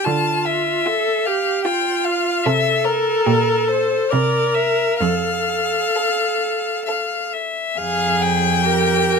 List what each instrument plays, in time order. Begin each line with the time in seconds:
0.04 cello D3, viola F4, violin A5
0.45 violin E5
0.86 violin F4, viola A4
1.25 viola G4, violin F5
1.65 violin F4 G5, viola F4
2.05 violin F5
2.44 cello C3, violin A4 E5, viola A4
2.85 violin A#4
3.26 cello A#2, violin G4
3.68 violin C5
4.11 cello C3, viola A#4, violin A#4 D5
4.55 violin E5
4.98 cello F2, viola A4, violin F5
5.96 violin A4
6.86 violin A4 F5
7.33 violin E5
7.77 cello F2, violin G#4 F5, viola G#4
8.21 violin G5
8.66 viola G4, violin A#4
9.09 violin A#4